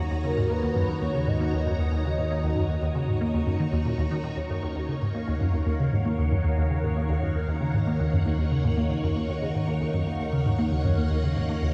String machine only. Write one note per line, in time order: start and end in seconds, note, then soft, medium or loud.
0.00 4.37 D#4 medium
0.00 4.38 F#4 medium
0.00 11.74 C#5 medium
0.00 4.38 A#5 medium
4.38 11.74 D#4 medium
4.47 11.74 A#4 medium
5.13 11.74 F5 medium
5.25 11.74 F#5 medium